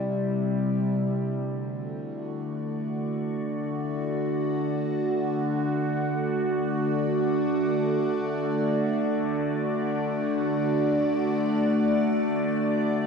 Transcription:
ambient pad
Already playing: C3 G3 E4 D5
1.01 D3
1.15 A3
1.44 F#4
1.83 D5

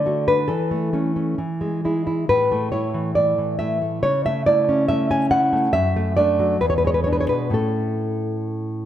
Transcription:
nylon-string guitar
Already playing: D3 D5
0.06 A3 F#4
0.28 D4 B4
0.48 E3 A4
0.71 A3
0.93 A3 C#4
1.16 C#4
1.38 E3
1.61 G#3
1.85 G#3 E4
2.07 E4
2.29 A2 B4
2.52 A3
2.72 A3 E4 C#5
2.94 E3
3.15 A3 D5
3.38 E3
3.59 A3 E4 E5
3.82 A3
4.03 C#3 C#5
4.25 A3 E5
4.46 A3 E4 D5
4.69 C#4
4.88 A3 E5
5.11 C#4 G#5
5.31 A3 E4 F#5
5.53 A3
5.73 F#2 E5
5.96 A3
6.17 A3 D4 D5
6.39 F#3
6.61 E2 B4
6.70 C#5
6.78 B4
6.84 G#3 C#5
6.94 B4
7.04 G#3 D4 C#5
7.13 B4
7.20 C#5
7.29 B2 B4
7.50 A2 A3 C#4 A4

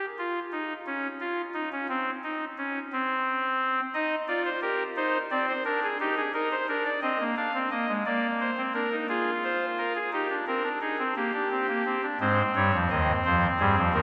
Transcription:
pipe organ
0.19 F4
0.52 D#4
0.86 C#4
1.20 F4
1.54 D#4
1.72 C#4
1.89 C4
2.24 D#4
2.58 C#4
2.93 C4
3.94 D#4 D#5
4.28 F4 D5
4.45 C5
4.62 G4 A#4
4.96 D#4 C5
5.31 C4 D5
5.48 C5
5.65 D4 A#4
5.83 G#4
6.00 D#4 G4
6.17 G#4
6.34 D#4 A#4
6.51 C5
6.69 D4 A#4
6.85 D5
7.02 C4 D#5
7.20 A#3
7.37 D4 F5
7.54 C4
7.71 A#3 D#5
7.89 G#3
8.06 A#3 D5
8.40 C5
8.57 C4
8.74 D4 A#4
8.92 D#4
9.09 F4 G#4
9.44 C5
9.78 A#4
9.95 G#4
10.13 D#4 G4
10.30 D4
10.47 C4 A#4
10.64 D4
10.81 D#4 G#4
10.99 C4
11.16 A#3 G4
11.34 D4
11.51 C4
11.68 A#3
11.85 C4
12.03 D4
12.20 G#2 G#3 C4 C5
12.56 G2 G3 C#5
12.73 F2 F3
12.90 D#2 D#3 D#5
13.25 F2 F3 C5
13.59 G2 G3 G#4
13.77 F2 F3
13.94 D#2 D#3 A#4

